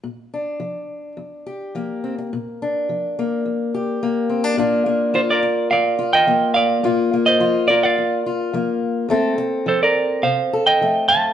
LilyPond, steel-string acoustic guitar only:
\new Staff \with { instrumentName = "Steel-string acoustic guitar" } { \time 4/4 \key bes \major \tempo 4 = 106 << { r8 d'2 g'8 bes8 c'16 r16 | r8 d'4 bes4 g'8 bes8 c'16 d'16 | <bes d' f'>8 bes8 f'4. f'8 bes4 | <bes f'>8 bes8 f'8 f'4 f'8 bes4 |
<a c' a'>4. r4 a'8 a4 | } \\ { bes,4 f4 f,4 f4 | bes,4 f4 f,4 r4 | bes,4 r4 f,4 f4 | bes,4 f4 f,4 f4 |
r4 f4 c4 f4 | } >> }